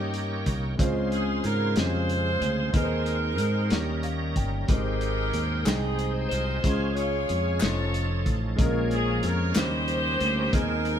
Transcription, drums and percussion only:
0.14 closed hi-hat
0.46 kick, closed hi-hat
0.79 kick, closed hi-hat
1.12 closed hi-hat
1.44 closed hi-hat
1.76 snare, closed hi-hat
2.09 closed hi-hat
2.42 closed hi-hat
2.74 kick, closed hi-hat
3.06 closed hi-hat
3.38 closed hi-hat
3.70 snare, closed hi-hat
4.03 closed hi-hat
4.36 kick, closed hi-hat
4.68 kick, closed hi-hat
5.01 closed hi-hat
5.33 closed hi-hat
5.65 snare, clap, closed hi-hat
5.99 closed hi-hat
6.31 closed hi-hat
6.64 kick, closed hi-hat
6.97 closed hi-hat
7.29 closed hi-hat
7.60 snare, clap, closed hi-hat
7.94 closed hi-hat
8.26 kick, closed hi-hat
8.59 kick, closed hi-hat
8.91 closed hi-hat
9.23 closed hi-hat
9.54 snare, clap, closed hi-hat
9.88 closed hi-hat
10.20 closed hi-hat
10.53 kick, closed hi-hat
10.85 closed hi-hat

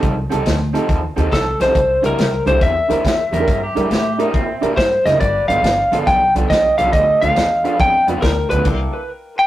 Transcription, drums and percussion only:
0.03 kick, closed hi-hat
0.31 closed hi-hat
0.46 snare, closed hi-hat
0.75 closed hi-hat
0.89 kick, closed hi-hat
1.18 closed hi-hat
1.32 kick, snare, closed hi-hat
1.60 snare, closed hi-hat
1.75 kick, closed hi-hat
2.04 closed hi-hat
2.18 snare, closed hi-hat
2.47 closed hi-hat
2.61 kick, closed hi-hat
2.90 closed hi-hat
3.05 kick, snare, closed hi-hat
3.33 closed hi-hat
3.48 kick, closed hi-hat
3.77 closed hi-hat
3.91 snare, closed hi-hat
4.19 closed hi-hat
4.34 kick, closed hi-hat
4.63 closed hi-hat
4.77 kick, snare, closed hi-hat
5.06 snare, closed hi-hat
5.21 kick, closed hi-hat
5.50 closed hi-hat
5.64 snare, closed hi-hat
5.93 closed hi-hat
6.07 kick, closed hi-hat
6.36 closed hi-hat
6.50 kick, snare, closed hi-hat
6.78 closed hi-hat
6.93 kick, closed hi-hat
7.22 closed hi-hat
7.36 snare, closed hi-hat
7.65 closed hi-hat
7.80 kick, closed hi-hat
8.08 closed hi-hat
8.22 kick, snare, closed hi-hat
8.51 closed hi-hat
8.65 kick, closed hi-hat, crash

